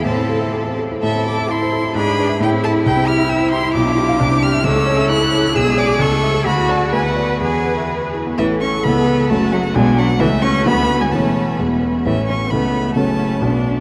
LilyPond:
<<
  \new Staff \with { instrumentName = "Violin" } { \time 2/4 \key a \minor \tempo 4 = 132 a''4. r8 | e''8 d'''8 c'''4 | b''4 g''8 a''8 | g''8 f'''8 e'''8 c'''8 |
d'''4. f'''8 | \key a \major e'''4 fis'''4 | e'''8 d'''8 cis'''4 | b''8 a''8 gis''16 fis''8. |
gis''4 r4 | e''8 cis'''8 b''4 | a''8 fis''8 gis''8 fis''8 | e''8 cis'''8 b''8. gis''16 |
a''4 r4 | e''8 cis'''8 b''4 | a''4. r8 | }
  \new Staff \with { instrumentName = "Grand piano" } { \time 2/4 \key a \minor a,16 c'16 a'16 e''16 a''16 c''16 a'16 e'16 | a,16 c'16 a'16 e''16 a''16 c''16 a'16 e'16 | gis,16 d'16 b'16 e''16 a,16 c'16 a'16 e''16 | c,16 c'16 g'16 e''16 g''16 c''16 g'16 e'16 |
b,,16 d'16 g'16 f''16 c,16 c'16 g'16 e''16 | \key a \major cis,16 a16 cis''16 e''16 cis'''16 a'16 cis''16 e'16 | b,,16 gis16 d''16 gis''16 cis,16 a16 e''16 a'16 | d,16 a16 d''16 fis''16 d,16 b16 d''16 fis''16 |
e,16 b16 b'16 e''16 b''16 b'16 e'16 b16 | <a,, a, cis' e' a'>4 <cis, cis cis' e' a'>4 | <fis,, fis, cis' fis' a'>4 <b,, b, d' fis' b'>4 | <cis, cis cis' e' a'>4 <d, d b fis'>4 |
<e,, e, cis' e' a'>4 <e,, e, b e' gis'>4 | <a,, a, cis' e' a'>4 <cis, cis cis' e' a'>4 | <fis,, fis, cis' fis' a'>4 <b,, b, d' fis' b'>4 | }
  \new Staff \with { instrumentName = "Viola" } { \time 2/4 \key a \minor a'4. r8 | e'4 e'4 | d'8 d'8 e'4 | e'2 |
f'4 g'4 | \key a \major a'2 | gis'4 a'4 | fis'4 b'4 |
b'4. r8 | a'2 | fis'4 d'4 | a4 b4 |
cis'4 gis8 r8 | cis'4 a4 | cis'4 d'4 | }
  \new Staff \with { instrumentName = "Cello" } { \time 2/4 \key a \minor c'4. r8 | a'4 e'4 | gis'4 e'4~ | e'2~ |
e'4 d'4 | \key a \major cis'4 e'4 | gis'4 a'4 | fis'4 b'4 |
gis'4. r8 | e8 cis'8 b4 | a8 fis8 gis8 fis8 | e8 cis'8 b8. gis16 |
a4 r4 | e8 cis'8 b4 | a4. r8 | }
>>